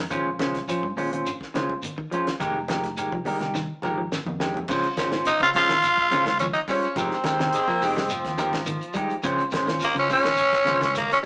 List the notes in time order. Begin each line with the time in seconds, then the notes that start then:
0.10 A#1 D#3 G#3 C#4 F4 C5, kick, closed hi-hat, shekere
0.26 A#1
0.39 C#3 G#3 C#4 F4 C5, snare, closed hi-hat, high conga, shekere
0.54 kick, snare, closed hi-hat
0.67 A#1 F3 C#4 F4 C5, closed hi-hat, shekere
0.83 G2, kick
0.96 A#2 G#3 C#4 F4 C5, open hi-hat, high conga, low conga, shekere
1.12 C#4 F4 C5, closed hi-hat, high conga
1.26 closed hi-hat, low conga, shekere
1.41 kick, snare
1.54 C#3 G#3 C#4 F4 C5, snare, closed hi-hat, high conga, shekere
1.70 kick
1.82 closed hi-hat, high conga, shekere
1.98 D#3, kick
2.11 F3 G#3 C#4 F4 C5, closed hi-hat, low conga, shekere
2.27 muted fingered electric bass stroke, snare, closed hi-hat
2.40 F1 D#3 G#3 D#4 G4 A#4, kick, closed hi-hat, shekere
2.68 F3 G#3 D#4 G4 A#4, snare, closed hi-hat, high conga, shekere
2.84 kick, snare, closed hi-hat
2.97 G#3 D#4 G4 A#4, closed hi-hat, shekere
3.12 C2 F3, kick
3.25 G3 G#3 D#4 G4 A#4, open hi-hat, high conga, low conga, shekere
3.40 C2 D#4 G4 A#4, snare, closed hi-hat, high conga
3.55 D#3, snare, low conga, shekere
3.82 G#1 F3 G#3 D#4 G4 A#4, mid tom, high conga, shekere
3.98 F3
4.11 muted fingered electric bass stroke, snare, high conga, shekere
4.25 F2, mid tom, high conga
4.40 D#3 G#3 D#4 G4, muted clean electric guitar stroke, snare, shekere
4.46 low conga
4.54 floor tom, low conga
4.68 A#1 C#3 G#3 C#4 F4 C5, kick, crash, low conga, shekere
4.83 closed hi-hat, shekere
4.96 G#1 G#3 C#4 F4 C5, kick, snare, closed hi-hat, high conga, shekere
5.11 D#3 C#4 F4 C5, snare, closed hi-hat, high conga, shekere
5.25 D#4 D#5, snare, closed hi-hat, shekere
5.39 C#3 C#4 F4 C5 F5, kick, closed hi-hat, shekere
5.53 A#1 G#3 C#4 F4 C5 F5, open hi-hat, low conga, shekere
5.69 D#3, snare, closed hi-hat, shekere
5.83 closed hi-hat, shekere
5.97 G#1, kick, closed hi-hat, shekere
6.11 C#3 G#3 C#4 F4 C5, snare, closed hi-hat, high conga, shekere
6.25 C#2, kick, snare, closed hi-hat, shekere
6.39 F3 C#4 C#5, closed hi-hat, high conga, shekere
6.54 D#4 D#5, closed hi-hat, shekere
6.68 G3 G#3 C#4 F4 C5 C#5, kick, open hi-hat, low conga, shekere
6.83 closed hi-hat, shekere
6.96 F1 F3 G#3 C4 D#4 G4 A#4 C5, kick, snare, closed hi-hat, shekere
7.11 snare, shekere
7.24 D#2 G#3 D#4 G4 A#4, kick, snare, closed hi-hat, high conga, shekere
7.39 C3 D#4 G4 A#4, snare, closed hi-hat, high conga, shekere
7.53 G#3, closed hi-hat, shekere
7.68 F3 A#3, kick, shekere
7.81 F1 G#3 D#4 G4, open hi-hat, low conga, shekere
7.96 G3, snare, shekere
8.09 F3, closed hi-hat, shekere
8.25 D#2, kick, snare, closed hi-hat, shekere
8.38 D#3 D#4 G4 A#4, muted clean electric guitar stroke, snare, closed hi-hat, high conga, shekere
8.52 G#1, kick, snare, closed hi-hat, shekere
8.66 D#3, closed hi-hat, high conga, shekere
8.81 closed hi-hat, shekere
8.93 G3 G#3 D#4 G4, muted clean electric guitar stroke, kick, closed hi-hat, high conga, low conga, shekere
9.09 closed hi-hat, shekere
9.23 A#1 C#3 G#3 C#4 F4 C5, kick, closed hi-hat, shekere
9.38 closed hi-hat, shekere
9.51 G#1 G#3 C#4 C5, kick, snare, closed hi-hat, high conga, shekere
9.66 D#3 C#4 F4 C5, snare, closed hi-hat, high conga, shekere
9.80 A#4, snare, closed hi-hat, shekere
9.84 A#3
9.95 C#3 C#4 F4 C5, kick, closed hi-hat, shekere
9.99 C#4 C#5
10.08 A#1 G#3 C#4 F4 C5 C#5, open hi-hat, low conga, shekere
10.13 C#4
10.24 D#3, snare, closed hi-hat, shekere
10.37 closed hi-hat, shekere
10.53 G#1, kick, snare, closed hi-hat, shekere
10.65 C#3 G#3 C#4 F4 C5, snare, closed hi-hat, high conga, low conga, shekere
10.81 C#2, kick, snare, closed hi-hat, shekere
10.94 A#3 A#4, muted clean electric guitar stroke, snare, closed hi-hat, high conga, shekere
11.11 C#4 C#5, snare, closed hi-hat, shekere